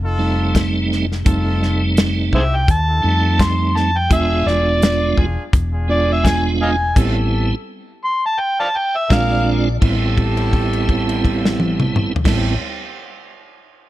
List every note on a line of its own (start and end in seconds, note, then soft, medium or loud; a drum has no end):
0.00 1.22 F1 medium
0.00 0.64 D#4 medium
0.00 0.64 F4 medium
0.00 0.65 A4 loud
0.18 1.06 G3 medium
0.18 1.06 A3 medium
0.18 1.06 C4 medium
0.18 1.07 D#4 medium
0.55 kick medium
0.55 snare loud
0.55 closed hi-hat medium
0.92 snare soft
1.12 snare soft
1.25 2.29 F1 loud
1.25 2.41 G3 medium
1.25 2.41 A3 medium
1.25 2.41 C4 medium
1.25 1.81 D#4 medium
1.25 2.41 D#4 medium
1.25 1.82 F4 medium
1.25 1.82 A4 loud
1.25 kick loud
1.25 closed hi-hat medium
1.63 snare soft
1.97 snare loud
1.97 closed hi-hat medium
2.32 2.65 C2 medium
2.32 2.60 D#4 medium
2.32 2.61 F4 medium
2.32 2.61 G4 medium
2.32 2.42 G#4 medium
2.32 2.43 C5 medium
2.32 2.57 E5 loud
2.32 kick medium
2.56 2.69 G5 medium
2.68 3.01 D#2 medium
2.68 3.44 A5 loud
2.68 kick loud
2.68 closed hi-hat medium
2.87 3.49 D#4 medium
2.87 3.49 F4 medium
2.87 3.50 A4 medium
3.02 4.07 F2 medium
3.02 3.91 G3 medium
3.02 3.91 A3 medium
3.02 3.91 C4 medium
3.02 3.91 D#4 medium
3.39 3.78 C6 medium
3.39 kick medium
3.39 snare loud
3.39 closed hi-hat medium
3.76 3.99 A5 medium
3.76 snare soft
3.98 4.11 G5 loud
4.09 4.44 E1 medium
4.09 5.26 G#3 medium
4.09 5.26 B3 medium
4.09 4.65 D4 medium
4.09 5.26 D4 medium
4.09 4.66 F4 medium
4.09 5.26 F4 medium
4.09 4.66 G#4 medium
4.09 kick loud
4.09 closed hi-hat medium
4.13 4.50 E5 loud
4.46 5.14 E1 medium
4.46 5.17 D5 loud
4.46 snare soft
4.82 snare loud
4.82 closed hi-hat medium
5.16 5.36 E1 loud
5.16 5.44 D4 medium
5.16 5.45 F4 medium
5.16 5.45 G#4 medium
5.16 kick medium
5.53 6.92 E1 medium
5.53 kick loud
5.53 closed hi-hat medium
5.72 6.34 D4 medium
5.72 6.34 F4 medium
5.72 6.34 G#4 medium
5.88 6.76 G#3 medium
5.88 6.76 B3 medium
5.88 6.77 D4 medium
5.88 6.77 F4 medium
5.88 6.09 D5 loud
6.12 6.28 E5 loud
6.25 6.44 G#5 medium
6.25 kick medium
6.25 snare loud
6.25 closed hi-hat medium
6.62 6.70 D#5 medium
6.62 6.70 F5 medium
6.62 6.96 G#5 medium
6.96 7.51 A1 medium
6.96 7.55 G3 medium
6.96 7.55 B3 medium
6.96 7.55 C4 medium
6.96 7.55 E4 medium
6.96 7.51 G4 medium
6.96 7.51 A4 medium
6.96 kick loud
6.96 closed hi-hat medium
6.96 crash medium
8.05 8.22 C6 loud
8.26 8.41 A5 medium
8.40 8.58 G5 medium
8.60 8.66 D5 medium
8.60 8.68 F5 medium
8.60 8.79 A5 medium
8.74 8.98 G5 medium
8.74 8.96 A5 medium
8.94 9.13 E5 medium
8.94 9.15 E5 loud
9.09 9.77 A#1 loud
9.09 9.69 G#3 loud
9.09 9.69 C4 medium
9.09 9.68 D4 medium
9.09 9.69 D4 medium
9.09 9.69 F4 loud
9.09 9.68 G#4 medium
9.09 9.68 A#4 loud
9.09 9.77 D5 medium
9.09 kick medium
9.09 snare loud
9.09 closed hi-hat soft
9.14 9.46 F5 medium
9.81 12.14 A1 medium
9.81 12.13 G3 medium
9.81 12.13 B3 medium
9.81 12.13 C4 medium
9.81 12.13 E4 medium
9.81 12.13 G4 medium
9.81 12.13 A4 medium
9.81 kick loud
9.81 crash medium
10.18 kick medium
10.18 crash soft
10.37 crash soft
10.53 kick medium
10.53 crash soft
10.73 crash soft
10.89 kick medium
10.89 crash soft
11.09 crash soft
11.25 kick medium
11.25 crash soft
11.45 snare medium
11.60 high tom medium
11.80 mid tom medium
11.96 mid tom medium
12.16 floor tom medium
12.24 12.55 A1 medium
12.24 12.55 G3 medium
12.24 12.55 A3 medium
12.24 12.55 B3 medium
12.24 12.55 C4 medium
12.24 12.55 E4 medium
12.24 12.56 G4 medium
12.24 12.56 A4 medium
12.24 kick loud
12.24 snare medium
12.24 crash loud